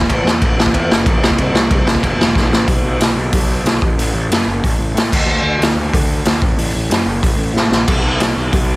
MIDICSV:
0, 0, Header, 1, 3, 480
1, 0, Start_track
1, 0, Tempo, 324324
1, 132, Time_signature, 4, 2, 24, 8
1, 12969, End_track
2, 0, Start_track
2, 0, Title_t, "Picked electric bass"
2, 0, Program_c, 0, 34
2, 143, Note_on_c, 0, 33, 103
2, 338, Note_off_c, 0, 33, 0
2, 347, Note_on_c, 0, 40, 97
2, 586, Note_off_c, 0, 40, 0
2, 614, Note_on_c, 0, 33, 99
2, 828, Note_off_c, 0, 33, 0
2, 837, Note_on_c, 0, 33, 109
2, 1071, Note_off_c, 0, 33, 0
2, 1099, Note_on_c, 0, 40, 109
2, 1317, Note_off_c, 0, 40, 0
2, 1326, Note_on_c, 0, 30, 89
2, 1556, Note_off_c, 0, 30, 0
2, 1566, Note_on_c, 0, 33, 112
2, 1796, Note_off_c, 0, 33, 0
2, 1809, Note_on_c, 0, 36, 91
2, 2037, Note_off_c, 0, 36, 0
2, 2048, Note_on_c, 0, 36, 95
2, 2254, Note_off_c, 0, 36, 0
2, 2263, Note_on_c, 0, 36, 94
2, 2504, Note_off_c, 0, 36, 0
2, 2523, Note_on_c, 0, 36, 100
2, 2745, Note_off_c, 0, 36, 0
2, 2754, Note_on_c, 0, 36, 93
2, 2989, Note_off_c, 0, 36, 0
2, 3011, Note_on_c, 0, 28, 99
2, 3199, Note_off_c, 0, 28, 0
2, 3208, Note_on_c, 0, 28, 91
2, 3456, Note_off_c, 0, 28, 0
2, 3486, Note_on_c, 0, 35, 100
2, 3693, Note_off_c, 0, 35, 0
2, 3702, Note_on_c, 0, 33, 101
2, 3943, Note_off_c, 0, 33, 0
2, 3956, Note_on_c, 0, 35, 80
2, 4156, Note_off_c, 0, 35, 0
2, 4189, Note_on_c, 0, 35, 87
2, 4392, Note_off_c, 0, 35, 0
2, 4428, Note_on_c, 0, 35, 89
2, 4631, Note_off_c, 0, 35, 0
2, 4673, Note_on_c, 0, 35, 90
2, 4874, Note_off_c, 0, 35, 0
2, 4928, Note_on_c, 0, 35, 83
2, 5317, Note_off_c, 0, 35, 0
2, 5389, Note_on_c, 0, 35, 91
2, 5592, Note_off_c, 0, 35, 0
2, 5646, Note_on_c, 0, 33, 86
2, 5842, Note_off_c, 0, 33, 0
2, 5881, Note_on_c, 0, 33, 87
2, 6079, Note_off_c, 0, 33, 0
2, 6124, Note_on_c, 0, 33, 88
2, 6321, Note_off_c, 0, 33, 0
2, 6351, Note_on_c, 0, 42, 86
2, 6554, Note_off_c, 0, 42, 0
2, 6600, Note_on_c, 0, 30, 94
2, 6799, Note_off_c, 0, 30, 0
2, 6862, Note_on_c, 0, 33, 88
2, 7052, Note_off_c, 0, 33, 0
2, 7088, Note_on_c, 0, 33, 80
2, 7284, Note_off_c, 0, 33, 0
2, 7317, Note_on_c, 0, 45, 97
2, 7518, Note_off_c, 0, 45, 0
2, 7579, Note_on_c, 0, 38, 84
2, 7770, Note_off_c, 0, 38, 0
2, 7790, Note_on_c, 0, 38, 89
2, 7994, Note_off_c, 0, 38, 0
2, 8022, Note_on_c, 0, 38, 85
2, 8229, Note_off_c, 0, 38, 0
2, 8274, Note_on_c, 0, 38, 91
2, 8476, Note_off_c, 0, 38, 0
2, 8512, Note_on_c, 0, 38, 91
2, 8715, Note_off_c, 0, 38, 0
2, 8785, Note_on_c, 0, 38, 94
2, 9169, Note_off_c, 0, 38, 0
2, 9257, Note_on_c, 0, 38, 99
2, 9449, Note_off_c, 0, 38, 0
2, 9493, Note_on_c, 0, 33, 87
2, 9687, Note_off_c, 0, 33, 0
2, 9735, Note_on_c, 0, 33, 94
2, 9928, Note_off_c, 0, 33, 0
2, 9987, Note_on_c, 0, 33, 80
2, 10175, Note_off_c, 0, 33, 0
2, 10205, Note_on_c, 0, 42, 80
2, 10403, Note_off_c, 0, 42, 0
2, 10447, Note_on_c, 0, 30, 84
2, 10643, Note_off_c, 0, 30, 0
2, 10704, Note_on_c, 0, 33, 87
2, 10894, Note_off_c, 0, 33, 0
2, 10917, Note_on_c, 0, 33, 80
2, 11118, Note_off_c, 0, 33, 0
2, 11155, Note_on_c, 0, 45, 91
2, 11356, Note_off_c, 0, 45, 0
2, 11403, Note_on_c, 0, 33, 83
2, 11601, Note_off_c, 0, 33, 0
2, 11661, Note_on_c, 0, 35, 81
2, 11852, Note_off_c, 0, 35, 0
2, 11893, Note_on_c, 0, 35, 82
2, 12087, Note_off_c, 0, 35, 0
2, 12139, Note_on_c, 0, 35, 84
2, 12330, Note_off_c, 0, 35, 0
2, 12370, Note_on_c, 0, 35, 87
2, 12565, Note_off_c, 0, 35, 0
2, 12624, Note_on_c, 0, 35, 87
2, 12969, Note_off_c, 0, 35, 0
2, 12969, End_track
3, 0, Start_track
3, 0, Title_t, "Drums"
3, 21, Note_on_c, 9, 36, 85
3, 141, Note_off_c, 9, 36, 0
3, 141, Note_on_c, 9, 36, 98
3, 142, Note_on_c, 9, 51, 89
3, 289, Note_off_c, 9, 36, 0
3, 290, Note_off_c, 9, 51, 0
3, 402, Note_on_c, 9, 38, 118
3, 550, Note_off_c, 9, 38, 0
3, 618, Note_on_c, 9, 36, 109
3, 618, Note_on_c, 9, 51, 79
3, 766, Note_off_c, 9, 36, 0
3, 766, Note_off_c, 9, 51, 0
3, 883, Note_on_c, 9, 38, 127
3, 978, Note_on_c, 9, 36, 99
3, 1031, Note_off_c, 9, 38, 0
3, 1097, Note_off_c, 9, 36, 0
3, 1097, Note_on_c, 9, 36, 99
3, 1098, Note_on_c, 9, 51, 85
3, 1245, Note_off_c, 9, 36, 0
3, 1246, Note_off_c, 9, 51, 0
3, 1354, Note_on_c, 9, 38, 118
3, 1502, Note_off_c, 9, 38, 0
3, 1570, Note_on_c, 9, 36, 124
3, 1571, Note_on_c, 9, 51, 83
3, 1718, Note_off_c, 9, 36, 0
3, 1719, Note_off_c, 9, 51, 0
3, 1829, Note_on_c, 9, 38, 127
3, 1929, Note_on_c, 9, 36, 90
3, 1977, Note_off_c, 9, 38, 0
3, 2047, Note_on_c, 9, 51, 84
3, 2048, Note_off_c, 9, 36, 0
3, 2048, Note_on_c, 9, 36, 92
3, 2195, Note_off_c, 9, 51, 0
3, 2196, Note_off_c, 9, 36, 0
3, 2297, Note_on_c, 9, 38, 117
3, 2445, Note_off_c, 9, 38, 0
3, 2526, Note_on_c, 9, 36, 120
3, 2526, Note_on_c, 9, 51, 79
3, 2674, Note_off_c, 9, 36, 0
3, 2674, Note_off_c, 9, 51, 0
3, 2771, Note_on_c, 9, 38, 127
3, 2883, Note_on_c, 9, 36, 94
3, 2919, Note_off_c, 9, 38, 0
3, 3006, Note_off_c, 9, 36, 0
3, 3006, Note_on_c, 9, 36, 103
3, 3009, Note_on_c, 9, 51, 81
3, 3154, Note_off_c, 9, 36, 0
3, 3157, Note_off_c, 9, 51, 0
3, 3272, Note_on_c, 9, 38, 121
3, 3420, Note_off_c, 9, 38, 0
3, 3484, Note_on_c, 9, 36, 102
3, 3501, Note_on_c, 9, 38, 59
3, 3632, Note_off_c, 9, 36, 0
3, 3649, Note_off_c, 9, 38, 0
3, 3743, Note_on_c, 9, 38, 107
3, 3891, Note_off_c, 9, 38, 0
3, 3963, Note_on_c, 9, 36, 104
3, 3963, Note_on_c, 9, 46, 57
3, 4111, Note_off_c, 9, 36, 0
3, 4111, Note_off_c, 9, 46, 0
3, 4446, Note_on_c, 9, 46, 64
3, 4464, Note_on_c, 9, 38, 103
3, 4594, Note_off_c, 9, 46, 0
3, 4612, Note_off_c, 9, 38, 0
3, 4922, Note_on_c, 9, 46, 60
3, 4928, Note_on_c, 9, 36, 109
3, 5070, Note_off_c, 9, 46, 0
3, 5076, Note_off_c, 9, 36, 0
3, 5412, Note_on_c, 9, 46, 53
3, 5430, Note_on_c, 9, 38, 99
3, 5560, Note_off_c, 9, 46, 0
3, 5578, Note_off_c, 9, 38, 0
3, 5654, Note_on_c, 9, 36, 105
3, 5802, Note_off_c, 9, 36, 0
3, 5902, Note_on_c, 9, 46, 58
3, 6050, Note_off_c, 9, 46, 0
3, 6385, Note_on_c, 9, 46, 61
3, 6403, Note_on_c, 9, 38, 111
3, 6533, Note_off_c, 9, 46, 0
3, 6551, Note_off_c, 9, 38, 0
3, 6864, Note_on_c, 9, 36, 106
3, 6869, Note_on_c, 9, 46, 54
3, 7012, Note_off_c, 9, 36, 0
3, 7017, Note_off_c, 9, 46, 0
3, 7352, Note_on_c, 9, 46, 54
3, 7370, Note_on_c, 9, 38, 99
3, 7500, Note_off_c, 9, 46, 0
3, 7518, Note_off_c, 9, 38, 0
3, 7585, Note_on_c, 9, 36, 114
3, 7590, Note_on_c, 9, 49, 102
3, 7733, Note_off_c, 9, 36, 0
3, 7738, Note_off_c, 9, 49, 0
3, 8313, Note_on_c, 9, 46, 54
3, 8331, Note_on_c, 9, 38, 101
3, 8461, Note_off_c, 9, 46, 0
3, 8479, Note_off_c, 9, 38, 0
3, 8784, Note_on_c, 9, 36, 113
3, 8791, Note_on_c, 9, 46, 61
3, 8932, Note_off_c, 9, 36, 0
3, 8939, Note_off_c, 9, 46, 0
3, 9254, Note_on_c, 9, 46, 56
3, 9271, Note_on_c, 9, 38, 101
3, 9402, Note_off_c, 9, 46, 0
3, 9419, Note_off_c, 9, 38, 0
3, 9500, Note_on_c, 9, 36, 118
3, 9648, Note_off_c, 9, 36, 0
3, 9745, Note_on_c, 9, 46, 59
3, 9893, Note_off_c, 9, 46, 0
3, 10225, Note_on_c, 9, 46, 60
3, 10242, Note_on_c, 9, 38, 110
3, 10373, Note_off_c, 9, 46, 0
3, 10390, Note_off_c, 9, 38, 0
3, 10701, Note_on_c, 9, 36, 103
3, 10706, Note_on_c, 9, 46, 54
3, 10849, Note_off_c, 9, 36, 0
3, 10854, Note_off_c, 9, 46, 0
3, 11193, Note_on_c, 9, 38, 55
3, 11341, Note_off_c, 9, 38, 0
3, 11425, Note_on_c, 9, 38, 88
3, 11573, Note_off_c, 9, 38, 0
3, 11660, Note_on_c, 9, 36, 113
3, 11660, Note_on_c, 9, 57, 89
3, 11808, Note_off_c, 9, 36, 0
3, 11808, Note_off_c, 9, 57, 0
3, 12136, Note_on_c, 9, 46, 57
3, 12154, Note_on_c, 9, 38, 108
3, 12284, Note_off_c, 9, 46, 0
3, 12302, Note_off_c, 9, 38, 0
3, 12621, Note_on_c, 9, 46, 58
3, 12623, Note_on_c, 9, 36, 109
3, 12769, Note_off_c, 9, 46, 0
3, 12771, Note_off_c, 9, 36, 0
3, 12969, End_track
0, 0, End_of_file